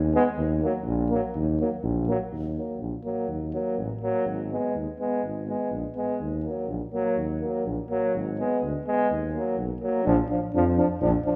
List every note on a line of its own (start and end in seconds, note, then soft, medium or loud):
0.00 0.16 D#2 medium
0.14 0.24 G#3 medium
0.14 0.24 B3 medium
0.37 0.64 D#2 medium
0.62 0.73 F#3 medium
0.62 0.72 A#3 medium
0.85 1.12 A#1 medium
1.10 1.23 F#3 medium
1.10 1.20 A#3 medium
1.35 1.62 D#2 medium
1.60 1.70 F#3 medium
1.60 1.70 A#3 medium
1.83 2.10 A#1 medium
2.07 2.19 F#3 medium
2.07 2.17 A#3 medium
2.32 2.59 D#2 medium
2.55 2.81 F#3 soft
2.55 2.79 A#3 soft
2.80 2.93 A#1 medium
3.04 3.29 F#3 medium
3.04 3.28 A#3 medium
3.27 3.55 D#2 medium
3.53 3.77 F#3 medium
3.53 3.78 A#3 medium
3.77 3.91 A1 medium
4.01 4.26 F#3 medium
4.01 4.25 A#3 medium
4.25 4.52 G#1 medium
4.51 4.75 G#3 soft
4.51 4.74 B3 medium
4.75 4.88 D#2 medium
4.99 5.23 G#3 medium
4.99 5.23 B3 medium
5.23 5.50 G#1 medium
5.48 5.72 G#3 soft
5.48 5.71 B3 soft
5.71 5.85 A#1 medium
5.95 6.20 G#3 soft
5.95 6.19 B3 soft
6.20 6.47 D#2 medium
6.44 6.69 F#3 soft
6.44 6.68 A#3 soft
6.67 6.81 A#1 medium
6.92 7.17 F#3 medium
6.92 7.16 A#3 medium
7.17 7.43 D#2 medium
7.41 7.66 F#3 soft
7.41 7.65 A#3 medium
7.66 7.79 A#1 medium
7.89 8.14 F#3 medium
7.89 8.13 A#3 medium
8.14 8.41 G#1 medium
8.39 8.62 G#3 medium
8.39 8.62 B3 medium
8.62 8.75 D2 medium
8.86 9.10 G#3 medium
8.86 9.09 B3 medium
9.10 9.37 D#2 medium
9.33 9.58 F#3 soft
9.33 9.57 A#3 soft
9.57 9.71 B1 medium
9.80 10.06 F#3 medium
9.80 10.04 A#3 medium
10.04 10.19 A#1 loud
10.04 10.17 F3 medium
10.04 10.14 D4 medium
10.29 10.40 F3 soft
10.29 10.39 D4 medium
10.54 10.80 F2 loud
10.54 10.65 F3 medium
10.54 10.63 D4 medium
10.77 10.88 F3 medium
10.77 10.87 D4 medium
11.01 11.14 A#1 loud
11.01 11.11 F3 medium
11.01 11.12 D4 medium
11.25 11.35 F3 medium
11.25 11.35 D4 medium